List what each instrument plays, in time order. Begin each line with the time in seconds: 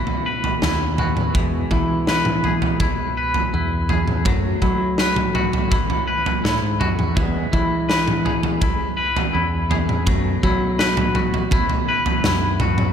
Already playing: pedal steel guitar B2 A3 E4, clean electric guitar F#3 E4 F#4 B4
0.07 floor tom
0.26 clean electric guitar B4
0.44 floor tom
0.62 picked electric bass D#2, clean electric guitar E4, snare, floor tom
0.98 clean electric guitar F#4, floor tom, mid tom
1.17 mid tom
1.33 picked electric bass E2, pedal steel guitar B2 G#3, clean electric guitar E3, kick, floor tom
1.71 picked electric bass E3, clean electric guitar E4, kick, floor tom
2.07 clean electric guitar B4, snare
2.25 mid tom
2.44 clean electric guitar G#4, floor tom
2.62 floor tom
2.80 clean electric guitar E4, kick, floor tom
3.17 clean electric guitar B4
3.34 floor tom
3.53 picked electric bass E2, clean electric guitar E4
3.89 clean electric guitar G#4, floor tom
4.08 mid tom
4.25 picked electric bass F#2, clean electric guitar F#3, pedal steel guitar A3, kick, floor tom
4.62 picked electric bass F#3, clean electric guitar E4, kick, floor tom
4.98 clean electric guitar B4, snare
5.16 floor tom, mid tom
5.35 clean electric guitar F#4, floor tom, mid tom
5.53 floor tom
5.71 clean electric guitar E4, kick, floor tom
5.90 floor tom
6.07 clean electric guitar B4
6.26 floor tom
6.44 picked electric bass A2, clean electric guitar E4, snare, floor tom
6.62 picked electric bass G#2
6.80 picked electric bass F#2, clean electric guitar F#4, floor tom, mid tom
6.99 picked electric bass E2, mid tom
7.16 picked electric bass E2, clean electric guitar E3, pedal steel guitar G#3 E4, kick, floor tom
7.52 picked electric bass E3, clean electric guitar E4, kick, floor tom
7.89 clean electric guitar B4, snare
8.08 mid tom
8.25 clean electric guitar G#4, floor tom
8.43 floor tom
8.61 clean electric guitar E4, kick, floor tom
8.97 clean electric guitar B4
9.16 floor tom
9.33 picked electric bass E2, clean electric guitar E4
9.70 clean electric guitar G#4, floor tom
9.89 mid tom
10.06 picked electric bass F#2, pedal steel guitar B2 A3, clean electric guitar F#3, kick, floor tom
10.43 picked electric bass F#3, clean electric guitar E4, kick, floor tom
10.79 clean electric guitar B4, snare
10.97 floor tom, mid tom
11.15 clean electric guitar F#4, floor tom, mid tom
11.34 floor tom
11.51 clean electric guitar E4, kick, floor tom
11.70 floor tom
11.89 clean electric guitar B4
12.06 floor tom
12.24 picked electric bass F#2, clean electric guitar E4, snare, floor tom
12.60 clean electric guitar F#4, floor tom, mid tom
12.78 mid tom